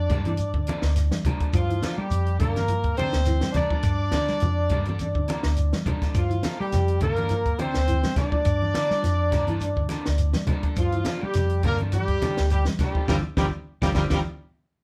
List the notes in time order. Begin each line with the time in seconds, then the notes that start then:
Already playing: D4 D5
0.09 G2 G3 A#3 D4 F4 A4, kick, closed hi-hat, low conga, claves, shekere
0.25 E3, closed hi-hat, high conga
0.37 closed hi-hat, shekere
0.54 D3, kick
0.67 A#3 D4 F4 A4, muted fingered electric bass stroke, closed hi-hat, high conga, claves, shekere
0.82 D2, snare
0.96 snare, closed hi-hat, shekere
1.11 G3, snare, closed hi-hat, high conga
1.24 F3 A#3 D4 F4 A4, kick, closed hi-hat, low conga, claves, shekere
1.40 D4 F4 A4, kick, closed hi-hat
1.53 G2 F3 F4, kick, closed hi-hat, claves, shekere
1.70 E3, closed hi-hat
1.82 F3 A#3 D4 F4 A4, snare, closed hi-hat, high conga, shekere
1.98 G3 G4, claves
2.10 F2, closed hi-hat, shekere
2.26 closed hi-hat
2.39 G2 D3 A#3 D4 F4 A4 A#4, kick, closed hi-hat, low conga, claves, shekere
2.56 snare, closed hi-hat, high conga
2.68 F3, closed hi-hat, shekere
2.84 kick, closed hi-hat
2.97 D3 A#3 C4 D4 F4 A4 C5, muted fingered electric bass stroke, closed hi-hat, high conga, low conga, claves, shekere
3.13 D2, snare, closed hi-hat
3.25 E3, snare, closed hi-hat, shekere
3.41 G3, snare, closed hi-hat, high conga
3.52 A#3 D4 D5, kick, snare, closed hi-hat, high conga, low conga, shekere
3.56 F4 A4, claves
3.70 F3 D4 F4 A4, kick
3.83 G2, kick, closed hi-hat, claves, shekere
4.12 D3 A#3 D4 F4 A4, kick, snare, closed hi-hat, high conga
4.27 G3, snare, claves
4.40 F2 F3, closed hi-hat, low conga, shekere
4.69 G2 G3 A#3 D4 F4 A4, kick, closed hi-hat, low conga, claves, shekere
4.85 D4 A4, muted clean electric guitar stroke, closed hi-hat, high conga
4.99 closed hi-hat, high conga, shekere
5.15 D3, kick
5.28 A#3 F4 A4, muted fingered electric bass stroke, muted clean electric guitar stroke, snare, closed hi-hat, high conga, claves, shekere
5.43 D2, snare
5.57 closed hi-hat, shekere
5.73 G3, snare, closed hi-hat, high conga
5.86 F3 A#3 D4 F4 A4, kick, closed hi-hat, high conga, low conga, claves, shekere
6.02 D4 F4 A4, kick, snare, closed hi-hat
6.14 G2 F3 F4, muted clean electric guitar stroke, kick, closed hi-hat, claves, shekere
6.30 E3, closed hi-hat
6.43 F3 A#3 F4 A4, snare, closed hi-hat, high conga, shekere
6.60 G3 G4, claves
6.72 F2, snare, closed hi-hat, low conga, shekere
6.88 closed hi-hat
7.00 G2 D3 A#3 F4 A4 A#4, muted clean electric guitar stroke, kick, closed hi-hat, low conga, claves, shekere
7.16 D4 F4 A4, closed hi-hat, high conga
7.29 F3, closed hi-hat, shekere
7.46 kick, closed hi-hat
7.59 D3 A#3 C4 D4 F4 A4 C5, muted fingered electric bass stroke, closed hi-hat, high conga, claves, shekere
7.74 D2, snare, closed hi-hat
7.87 E3, closed hi-hat, shekere
8.03 G3, snare, closed hi-hat, high conga
8.16 A#3 D4 F4 A4 D5, kick, snare, closed hi-hat, low conga, claves, shekere
8.32 F3, kick
8.45 G2, kick, closed hi-hat, claves, shekere
8.62 high conga
8.74 D3 A#3 D4 F4 A4, snare, closed hi-hat, high conga, shekere
8.90 G3, snare, claves
9.03 F2 F3, snare, closed hi-hat, shekere
9.31 G2 G3 A#3 D4 F4 A4, kick, snare, closed hi-hat, low conga, claves, shekere
9.47 E3 D4 F4 A4, closed hi-hat, high conga
9.60 closed hi-hat, shekere
9.77 D3, kick
9.89 A#3 D4 F4 A4, muted fingered electric bass stroke, snare, closed hi-hat, high conga, claves, shekere
10.06 D2, snare
10.18 closed hi-hat, shekere
10.33 G3, snare, closed hi-hat, high conga
10.47 F3 A#3 D4 F4 A4, kick, closed hi-hat, low conga, claves, shekere
10.63 D4 A4, kick, closed hi-hat
10.76 G2 F3 F4, kick, closed hi-hat, claves, shekere
10.92 E3, closed hi-hat
11.05 F3 A#3 D4 F4 A4, snare, closed hi-hat, high conga, shekere
11.21 G3 G4, claves
11.33 F2, snare, closed hi-hat, low conga, shekere
11.49 closed hi-hat
11.63 G2 D3 A#3 D4 F4 A4 A#4, kick, closed hi-hat, low conga, claves, shekere
11.78 D4 F4 A4, closed hi-hat, high conga
11.92 F3 G3 G4, closed hi-hat, high conga, shekere
12.08 kick, closed hi-hat
12.22 D3 D4 F4 A4, muted fingered electric bass stroke, snare, closed hi-hat, high conga, low conga, claves, shekere
12.37 D2, snare, closed hi-hat
12.50 G3 G4, muted clean electric guitar stroke, closed hi-hat, shekere
12.65 G3, snare, closed hi-hat, high conga
12.79 G3 A#3 D4 F4 G4 A4, kick, snare, closed hi-hat, low conga, claves, shekere
12.95 F3 D4 F4 A4, kick
13.08 G1 D3 F3 G3 D4 F4 G4 A#4, kick, snare, high conga, claves, shekere
13.37 G1 D3 F3 G3 D4 F4 G4 A#4, kick, snare, high conga, claves, shekere
13.82 G1 D3 F3 G3 D4 F4 G4 A#4, kick, snare, high conga, claves, shekere
13.95 G1 D3 F3 G3 D4 F4 G4 A#4, kick, snare, high conga, claves, shekere
14.10 G1 D3 F3 G3 D4 F4 G4 A#4, kick, snare, high conga, claves, shekere